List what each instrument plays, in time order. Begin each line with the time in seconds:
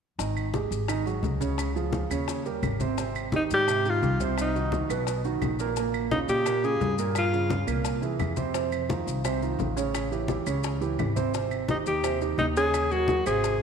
0.19 upright bass G#1, grand piano D#3 D#4 D#5, high bongo, high conga, maracas
0.36 high conga, claves, maracas
0.54 grand piano G#3 G4 G#4, high bongo, high conga, maracas
0.71 upright bass G#1, high bongo, maracas
0.88 grand piano D#3 D#4 D#5, high bongo, high conga, claves, maracas
1.06 grand piano F#3 F#4 G#4, high bongo, high conga, maracas
1.23 upright bass C#2, high bongo, low bongo, high conga, maracas
1.40 grand piano C#3 C#4 C#5, high bongo, high conga, maracas
1.58 high bongo, high conga, claves, maracas
1.75 grand piano F3 F4 G#4, high conga, maracas
1.93 high bongo, high conga, maracas
2.10 upright bass D#2, grand piano C#3 C#4 C#5, high bongo, claves, maracas
2.28 high bongo, high conga, maracas
2.45 grand piano G3 G4 A#4, high bongo, high conga, maracas
2.63 upright bass G#1, high bongo, low bongo, high conga, claves, maracas
2.80 grand piano C3 C4 C5, high bongo, high conga, maracas
2.97 grand piano C3 C4 C5, high bongo, high conga, maracas
3.15 high conga, claves, maracas
3.32 grand piano D#3 D#4 G4, alto saxophone D#4, high bongo, high conga, maracas
3.51 upright bass G#2, alto saxophone G4, high bongo, maracas
3.67 grand piano C3 C4 C5, high bongo, high conga, claves, maracas
3.85 grand piano D#3 D#4 G4, high bongo, high conga, maracas
3.90 alto saxophone F4
4.03 upright bass C2, high bongo, low bongo, high conga, maracas
4.20 grand piano C3 C4 C5, high bongo, high conga, maracas
4.37 alto saxophone D#4, high bongo, high conga, claves, maracas
4.55 grand piano D#3 D#4 F#4, high conga, maracas
4.72 grand piano D#3 D#4 F#4, high bongo, high conga, maracas
4.89 upright bass B1, grand piano B2 B3 B4, high bongo, claves, maracas
5.07 high bongo, high conga, maracas
5.24 grand piano D#3 D#4 F#4, high bongo, high conga, maracas
5.42 upright bass A#1, high bongo, low bongo, high conga, claves, maracas
5.59 grand piano A#2 A#3 A#4, high bongo, maracas
5.76 grand piano A#2 A#3 A#4, high bongo, high conga, maracas
5.94 high conga, claves, maracas
6.11 grand piano C#3 C#4 F4, alto saxophone D#4, high bongo, high conga, maracas
6.28 upright bass A#2, alto saxophone G4, high bongo, maracas
6.46 grand piano A#2 A#3 A#4, high bongo, high conga, claves, maracas
6.63 grand piano C#3 C#4 F4, alto saxophone G#4, high bongo, high conga, maracas
6.80 upright bass G2, high bongo, low bongo, high conga, maracas
6.98 grand piano A#2 A#3 A#4, high bongo, maracas
7.15 alto saxophone F4, high bongo, high conga, claves, maracas
7.33 grand piano C#3 C#4 F4, high conga, maracas
7.50 grand piano C#3 C#4 F4, high bongo, high conga, maracas
7.67 upright bass C2, grand piano A#2 A#3 A#4, high bongo, claves, maracas
7.85 high bongo, high conga, maracas
8.02 grand piano E3 E4 G#4, high bongo, high conga, maracas
8.19 upright bass F2, high bongo, low bongo, high conga, claves, maracas
8.36 grand piano C3 C4 C5, high bongo, high conga, maracas
8.54 grand piano C3 C4 C5, high bongo, high conga, maracas
8.72 high conga, claves, maracas
8.89 grand piano D#3 D#4 F4, high bongo, high conga, maracas
9.06 upright bass C2, high bongo, maracas
9.24 grand piano C3 C4 C5, high bongo, high conga, claves, maracas
9.42 grand piano D#3 D#4 F4, high bongo, high conga, maracas
9.59 upright bass A1, high bongo, low bongo, high conga, maracas
9.76 grand piano C#3 C#4 C#5, high bongo, maracas
9.94 high bongo, high conga, claves, maracas
10.11 grand piano E3 E4 G4, high conga, maracas
10.28 grand piano E3 E4 G4, high bongo, high conga, maracas
10.46 upright bass C#2, grand piano C#3 C#4 C#5, high bongo, claves, maracas
10.64 high bongo, high conga, maracas
10.81 grand piano E3 E4 G4, high bongo, high conga, maracas
10.99 upright bass G#1, high bongo, low bongo, high conga, claves, maracas
11.16 grand piano C3 C4 C5, high bongo, high conga, maracas
11.34 grand piano C3 C4 C5, high bongo, high conga, maracas
11.51 high conga, claves, maracas
11.68 grand piano D#3 D#4 G4, alto saxophone D#4, high bongo, high conga, maracas
11.86 upright bass D#2, alto saxophone G4, high bongo, maracas
12.03 grand piano C3 C4 C5, high bongo, high conga, claves, maracas
12.21 grand piano D#3 D#4 G4, high bongo, high conga, maracas
12.38 upright bass D#2, alto saxophone D#4, high bongo, low bongo, high conga, maracas
12.56 grand piano C#3 C#4 C#5, alto saxophone G#4, high bongo, maracas
12.73 high bongo, high conga, claves, maracas
12.91 grand piano F#3 F#4 A#4, alto saxophone F#4, high conga, maracas
13.08 grand piano F#3 F#4 A#4, high bongo, high conga, maracas
13.26 upright bass G#1, grand piano C3 C4 C5, alto saxophone G#4, high bongo, claves, maracas
13.44 high bongo, high conga, maracas